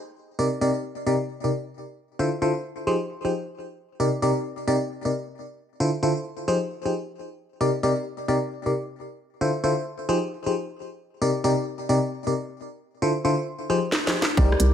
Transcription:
0.39 C3 D#4 G4 A#4 D5
0.61 C3 D#4 G4 A#4 D5
1.06 C3 D#4 G4 A#4 D5
1.44 C3 D#4 G4 A#4 D5
2.19 D3 E4 F4 A4 C5
2.42 D3 E4 F4 A4 C5
2.87 F3 D#4 G4 G#4 C5
3.25 F3 D#4 G4 G#4 C5
4.00 C3 D#4 G4 A#4 D5
4.22 C3 D#4 G4 A#4 D5
4.67 C3 D#4 G4 A#4 D5
5.05 C3 D#4 G4 A#4 D5
5.80 D3 E4 F4 A4 C5
6.03 D3 E4 F4 A4 C5
6.48 F3 D#4 G4 G#4 C5
6.86 F3 D#4 G4 G#4 C5
7.61 C3 D#4 G4 A#4 D5
7.83 C3 D#4 G4 A#4 D5
8.28 C3 D#4 G4 A#4 D5
8.66 C3 D#4 G4 A#4 D5
9.41 D3 E4 F4 A4 C5
9.64 D3 E4 F4 A4 C5
10.09 F3 D#4 G4 G#4 C5
10.46 F3 D#4 G4 G#4 C5
11.22 C3 D#4 G4 A#4 D5
11.44 C3 D#4 G4 A#4 D5
11.89 C3 D#4 G4 A#4 D5
12.27 C3 D#4 G4 A#4 D5
13.02 D3 E4 F4 A4 C5
13.25 D3 E4 F4 A4 C5
13.70 F3 D#4 G4 G#4 C5
13.92 snare
14.07 F3 D#4 G4 G#4 C5, snare
14.22 snare
14.37 C2 D#4 G4 A#4 D5, kick
14.52 cross-stick
14.60 C2, closed hi-hat

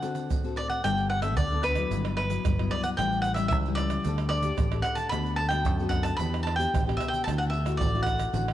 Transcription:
Already playing: D3 F#5
0.03 C4 F#4 A4, pandeiro, shaker
0.15 pandeiro, shaker
0.30 A2, pandeiro, shaker, surdo
0.44 C4 F#4 A4, pandeiro, shaker
0.56 D5, pandeiro
0.70 F#5, pandeiro, shaker
0.83 G1 G3 B3 D4 A4 G5, pandeiro, tamborim, shaker, surdo
0.98 pandeiro, shaker
1.10 F#5, pandeiro
1.22 B3 D4 A4 E5, pandeiro, tamborim, shaker
1.37 D2 D3 D5, pandeiro, shaker, surdo
1.51 B3 D4 A4, pandeiro, shaker
1.63 B4, pandeiro, tamborim, shaker
1.75 F#3 B3 E4, pandeiro, tamborim, shaker
1.91 G1 G2, pandeiro, shaker, surdo
2.05 pandeiro, tamborim, shaker
2.17 B4, pandeiro, tamborim
2.30 F#3 B3 E4, pandeiro, shaker
2.44 G1 G2, pandeiro, tamborim, shaker, surdo
2.58 F#3 B3 E4, pandeiro, tamborim, shaker
2.71 D5, pandeiro, tamborim
2.83 F#5, pandeiro, shaker
2.97 A1 A2 G3 C#4 E4 G5, pandeiro, tamborim, shaker, surdo
3.12 pandeiro, shaker
3.22 F#5, pandeiro, shaker
3.34 G3 E5, pandeiro, tamborim, shaker
3.39 C#4 E4
3.48 C#2 E3 E5, pandeiro, shaker, surdo
3.65 G3 C#4 E4, pandeiro, shaker
3.75 D5, pandeiro, tamborim, shaker
3.90 pandeiro, tamborim, shaker
4.04 D2 D3 D4 G4 A4, pandeiro, shaker, surdo
4.18 pandeiro, tamborim, shaker
4.29 D5, pandeiro, tamborim
4.42 D4 G4 A4, pandeiro, shaker
4.58 A1 A2, pandeiro, tamborim, shaker, surdo
4.72 D4 G4 A4, pandeiro, tamborim, shaker
4.82 F#5, pandeiro, tamborim, shaker
4.95 A5, pandeiro, shaker
5.09 D2 D3 B3 B5, pandeiro, tamborim, shaker, surdo
5.14 F#4 A4
5.26 pandeiro, shaker
5.36 A5, pandeiro
5.49 B3 F#4 A4 G5, pandeiro, tamborim, shaker
5.65 F#2 D3, pandeiro, shaker, surdo
5.80 B3 F#4 A4, pandeiro, shaker
5.89 F#5, pandeiro, tamborim, shaker, surdo
6.03 A5, pandeiro, tamborim, shaker
6.17 E2 E3 B3 B5, pandeiro, shaker, surdo
6.21 D4 G4
6.34 pandeiro, tamborim, shaker
6.43 A5
6.47 pandeiro, tamborim
6.56 B3 D4 G4 G5, pandeiro, shaker
6.74 A1 B2, pandeiro, tamborim, shaker, surdo
6.87 B3 D4 G4, pandeiro, tamborim, shaker
6.97 E5, pandeiro, tamborim, shaker
7.08 G5
7.14 pandeiro, shaker
7.24 D2 D3 A3 E4 A5, pandeiro, tamborim, shaker, surdo
7.28 F#4
7.38 F#5, pandeiro, shaker
7.50 E5, pandeiro
7.66 A3 E4 F#4, pandeiro, tamborim, shaker
7.77 A1 A2 D5, pandeiro, shaker, surdo
7.94 A3 E4 F#4, pandeiro, shaker
8.03 F#5, pandeiro, tamborim, shaker, surdo
8.19 pandeiro, tamborim, shaker
8.33 A1 D3 A3 E4 F#4, pandeiro, shaker, surdo
8.48 pandeiro, tamborim, shaker

